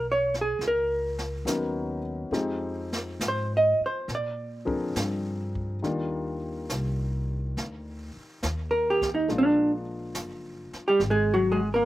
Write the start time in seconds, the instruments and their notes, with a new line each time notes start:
Already playing: upright bass B1
0.12 hollow-body jazz guitar C#5
0.34 snare
0.41 hollow-body jazz guitar G#4
0.59 upright bass C#2, brush sweep, snare
0.68 hollow-body jazz guitar A#4
1.19 snare
1.45 upright bass D#2, grand piano F#3 B3 C#4 D#4 A#4, snare, hi-hat pedal
2.31 upright bass F2, grand piano F3 G#3 C4 D#4 G4, brush sweep, snare
2.93 snare
3.19 upright bass G#2, snare, hi-hat pedal
3.28 hollow-body jazz guitar C5
3.57 hollow-body jazz guitar D#5
3.81 muted upright bass stroke
3.86 hollow-body jazz guitar C5
4.08 upright bass A#2, brush sweep, snare
4.15 hollow-body jazz guitar D5
4.65 grand piano F3 C4 D4 G#4 A#4, kick
4.96 upright bass G2, snare, hi-hat pedal
5.55 kick
5.82 upright bass D#2, grand piano D#3 G3 A#3 D4 F4, brush sweep, snare
6.70 upright bass C2, snare, hi-hat pedal
7.57 upright bass D2, brush sweep, snare
8.16 muted upright bass stroke
8.43 upright bass D#2, snare, hi-hat pedal
8.71 hollow-body jazz guitar A#4
8.90 hollow-body jazz guitar G4
9.02 kick, snare
9.15 hollow-body jazz guitar D#4
9.28 upright bass A#1, grand piano F3 G#3 A#3 D4 F4, brush sweep, snare
9.38 hollow-body jazz guitar D4
10.15 upright bass F#1, snare, hi-hat pedal
10.73 muted upright bass stroke, snare
10.88 hollow-body jazz guitar G3 G4
11.00 upright bass G#1, brush sweep, snare
11.10 hollow-body jazz guitar G#3 G#4
11.34 hollow-body jazz guitar F#3 F#4
11.52 hollow-body jazz guitar G#3 G#4
11.74 hollow-body jazz guitar A#3 A#4